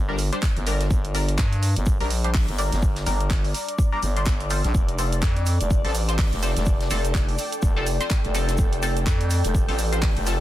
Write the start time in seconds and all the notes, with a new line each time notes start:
Already playing: G1 D5
0.09 G3 D4 A#4
0.18 open hi-hat, shaker
0.32 G3 D4 C5, closed hi-hat
0.42 kick, snare, clap, shaker
0.57 G1, closed hi-hat
0.67 G3 D4 A#4, open hi-hat, shaker
0.80 snare, closed hi-hat
0.91 G1, kick, shaker
1.05 closed hi-hat
1.15 G3 D4 A#4, open hi-hat, shaker
1.29 closed hi-hat
1.38 G2, kick, snare, clap, shaker
1.53 closed hi-hat
1.63 open hi-hat, shaker
1.76 G1, closed hi-hat
1.86 kick, shaker
2.00 A#1 G3 D4 A#4, open hi-hat
2.10 open hi-hat, shaker
2.24 G3 D4 C5, closed hi-hat
2.34 kick, snare, clap, open hi-hat
2.48 G1, closed hi-hat
2.58 G3 D4 A#4, open hi-hat, shaker
2.72 G1, snare, closed hi-hat
2.82 kick, shaker
2.96 snare, closed hi-hat
3.06 G1 G3 D4 A#4, open hi-hat, shaker
3.20 closed hi-hat
3.30 kick, snare, clap, shaker
3.44 open hi-hat
3.54 open hi-hat, shaker
3.68 closed hi-hat
3.78 kick, shaker
3.92 G3 D4 A#4
4.03 G1, open hi-hat, shaker
4.16 G3 D4 C5, closed hi-hat
4.26 G1, kick, snare, clap, shaker
4.40 closed hi-hat
4.50 F3 C4 A4, open hi-hat, shaker
4.64 A#1, snare, closed hi-hat
4.75 F1 A4, kick, shaker
4.88 closed hi-hat
4.98 F3 C4 A4, open hi-hat, shaker
5.12 closed hi-hat, shaker
5.22 F2, kick, snare, clap, shaker
5.36 closed hi-hat
5.41 G5
5.46 open hi-hat, shaker
5.60 F1, closed hi-hat, shaker
5.71 kick, shaker
5.85 A1 F3 C4 A4, open hi-hat
5.95 open hi-hat, shaker
6.08 F3 C4 C5, closed hi-hat, shaker
6.18 kick, snare, clap, open hi-hat, shaker
6.33 F1, closed hi-hat
6.43 F3 C4 A4, open hi-hat, shaker
6.57 F1, snare, closed hi-hat, shaker
6.66 kick, shaker
6.81 snare, closed hi-hat
6.90 F1 F3 C4 A4, open hi-hat, shaker
7.05 closed hi-hat, shaker
7.14 kick, snare, clap, shaker
7.29 open hi-hat
7.38 open hi-hat, shaker
7.52 closed hi-hat, shaker
7.62 F1, kick, shaker
7.76 F3 C4 A4
7.87 open hi-hat, shaker
8.01 F3 C4 C5, closed hi-hat, shaker
8.10 kick, snare, clap, shaker
8.25 F1, closed hi-hat
8.35 F3 C4 A4, open hi-hat, shaker
8.48 snare, closed hi-hat, shaker
8.58 F1, kick, shaker
8.73 closed hi-hat
8.83 F3 C4 A4, open hi-hat, shaker
8.97 closed hi-hat, shaker
9.07 F2, kick, snare, clap, shaker
9.21 closed hi-hat
9.30 open hi-hat, shaker
9.44 F1, closed hi-hat, shaker
9.55 kick, shaker
9.68 A1 F3 C4 A4, open hi-hat
9.79 open hi-hat, shaker
9.92 F3 C4 C5, closed hi-hat, shaker
10.02 kick, snare, clap, open hi-hat, shaker
10.17 F1, closed hi-hat
10.26 F3 C4 A4, snare, open hi-hat, shaker